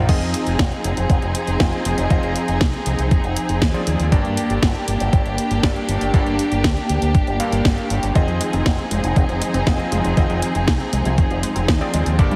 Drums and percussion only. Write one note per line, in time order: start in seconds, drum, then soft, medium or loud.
0.09 kick loud
0.09 closed hi-hat medium
0.09 crash medium
0.21 closed hi-hat soft
0.34 closed hi-hat loud
0.47 closed hi-hat medium
0.59 kick loud
0.59 snare loud
0.59 closed hi-hat medium
0.72 closed hi-hat soft
0.84 closed hi-hat medium
0.97 closed hi-hat medium
1.10 kick loud
1.10 closed hi-hat medium
1.22 closed hi-hat soft
1.35 closed hi-hat medium
1.47 closed hi-hat medium
1.60 kick loud
1.60 snare loud
1.60 closed hi-hat medium
1.73 closed hi-hat soft
1.85 closed hi-hat medium
1.98 closed hi-hat medium
2.10 kick loud
2.10 closed hi-hat medium
2.23 closed hi-hat soft
2.36 closed hi-hat medium
2.48 closed hi-hat medium
2.61 kick loud
2.61 snare loud
2.61 closed hi-hat medium
2.73 closed hi-hat soft
2.86 closed hi-hat medium
2.99 closed hi-hat medium
3.11 kick loud
3.11 closed hi-hat medium
3.24 closed hi-hat soft
3.37 closed hi-hat loud
3.49 closed hi-hat medium
3.62 kick loud
3.62 snare loud
3.62 closed hi-hat medium
3.74 closed hi-hat soft
3.87 closed hi-hat medium
4.00 closed hi-hat medium
4.12 kick loud
4.12 closed hi-hat medium
4.25 closed hi-hat soft
4.37 closed hi-hat medium
4.50 closed hi-hat soft
4.63 kick loud
4.63 snare loud
4.63 closed hi-hat medium
4.75 closed hi-hat soft
4.88 closed hi-hat medium
5.00 closed hi-hat medium
5.13 kick loud
5.13 closed hi-hat soft
5.26 closed hi-hat soft
5.38 closed hi-hat medium
5.51 closed hi-hat soft
5.63 kick loud
5.63 snare loud
5.63 closed hi-hat medium
5.76 closed hi-hat soft
5.89 closed hi-hat medium
6.01 closed hi-hat soft
6.14 kick loud
6.14 closed hi-hat soft
6.26 closed hi-hat soft
6.39 closed hi-hat medium
6.52 closed hi-hat soft
6.64 kick loud
6.64 snare loud
6.64 closed hi-hat soft
6.77 closed hi-hat soft
6.89 closed hi-hat medium
7.02 closed hi-hat soft
7.15 kick loud
7.15 closed hi-hat soft
7.27 closed hi-hat soft
7.40 closed hi-hat medium
7.52 closed hi-hat soft
7.65 kick loud
7.65 snare loud
7.65 closed hi-hat soft
7.78 closed hi-hat soft
7.90 closed hi-hat medium
8.03 closed hi-hat soft
8.15 kick loud
8.15 closed hi-hat soft
8.28 closed hi-hat soft
8.41 closed hi-hat medium
8.53 closed hi-hat soft
8.66 kick loud
8.66 snare loud
8.66 closed hi-hat medium
8.79 closed hi-hat soft
8.91 closed hi-hat medium
9.04 closed hi-hat medium
9.16 kick loud
9.16 closed hi-hat medium
9.29 closed hi-hat soft
9.42 closed hi-hat medium
9.54 closed hi-hat soft
9.67 kick loud
9.67 snare loud
9.67 closed hi-hat soft
9.79 closed hi-hat soft
9.92 closed hi-hat medium
10.05 closed hi-hat soft
10.17 kick loud
10.17 closed hi-hat medium
10.30 closed hi-hat soft
10.42 closed hi-hat medium
10.55 closed hi-hat medium
10.68 kick loud
10.68 snare loud
10.68 closed hi-hat medium
10.80 closed hi-hat soft
10.93 closed hi-hat medium
11.05 closed hi-hat medium
11.18 kick loud
11.18 closed hi-hat medium
11.31 closed hi-hat soft
11.43 closed hi-hat medium
11.56 closed hi-hat medium
11.68 kick loud
11.68 snare loud
11.68 closed hi-hat medium
11.81 closed hi-hat soft
11.94 closed hi-hat medium
12.06 closed hi-hat soft
12.19 kick loud
12.19 closed hi-hat medium
12.31 closed hi-hat soft